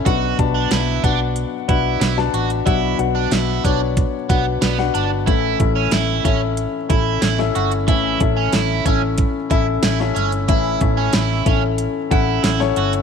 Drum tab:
HH |x-x-x-x-x-x-x-xx|x-x-x-x-x-x-x-x-|x-x-x-x-x-x-x-xx|x-x-x-x-x-x-x-xx|
SD |----o-------oo--|----o-------oo--|----o-------oo--|----o-------oo--|
BD |o-o---o---o-----|o-----o-o-o-----|o-o---o---o-----|o-o---o-o-o-----|

HH |x-x-x-x-x-x-x-xx|
SD |----o-------oo--|
BD |o-o---o---o-----|